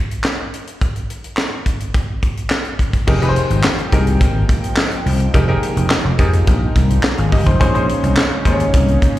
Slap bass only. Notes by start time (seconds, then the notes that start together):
3.08 F1
3.50 G#1
3.92 C2
4.21 G#1
5.06 C2
5.34 F1
5.76 F1
6.05 F1
6.19 F2
6.47 A#1
6.76 C2
7.18 G#1
7.32 G1
7.46 F1
7.61 A#1
8.03 C2
8.45 D#2
8.74 C2